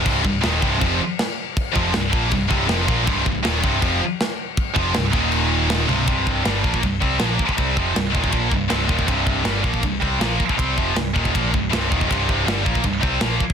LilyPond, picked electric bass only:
\new Staff \with { instrumentName = "Picked electric bass" } { \clef bass \time 4/4 \key c \minor \tempo 4 = 159 c,,8 c,,8 ees,,8 c,,8 f,,8 r4. | r8 f,,8 c,,8 bes,,8 c,,8 c,,8 f,,8 bes,,8 | c,,8 c,,8 ees,,8 c,,8 f,,8 r4. | r8 f,,8 c,,8 ees,,2 c,,8 |
c,,4 g,,8 bes,,8 c,,8 c,8 bes,,8 r8 | c,8 f,,8 c,,8 ees,,8 bes,,8 c,,8 c,,8 ees,,8 | c,,4 g,,8 bes,,8 c,,8 c,8 bes,,8 r8 | c,8 f,,8 c,,8 ees,,8 bes,,8 c,,8 c,,8 ees,,8 |
c,,4 g,,8 bes,,8 c,,8 c,8 bes,,8 r8 | }